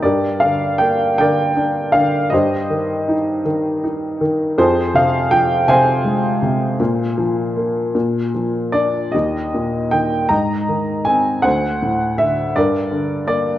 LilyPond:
<<
  \new Staff \with { instrumentName = "Upright piano" } { \time 6/8 \key g \phrygian \tempo 4. = 53 << { d''8 f''8 g''8 g''4 f''8 | ees''4 r2 | c''8 f''8 g''8 aes''4.~ | aes''2 r8 d''8 |
ees''4 g''8 bes''4 aes''8 | fis''4 fes''8 d''4 d''8 | } \\ { <g' bes'>4. <bes' d''>4. | <g' c''>4. r4. | <f' aes'>4. <c'' f''>4.~ | <c'' f''>2 r4 |
g'4. ees''4. | c''4. bes'4. | } >> }
  \new Staff \with { instrumentName = "Upright piano" } { \clef bass \time 6/8 \key g \phrygian g,8 d8 bes8 d8 d'8 d8 | g,8 ees8 ees'8 ees8 ees'8 ees8 | f,8 c8 f8 c8 aes8 c8 | bes,8 f8 bes8 bes,8 f8 d'8 |
ees,8 bes,8 ees8 aes,8 ees8 c'8 | d,8 a,8 d8 g,8 d8 bes8 | }
>>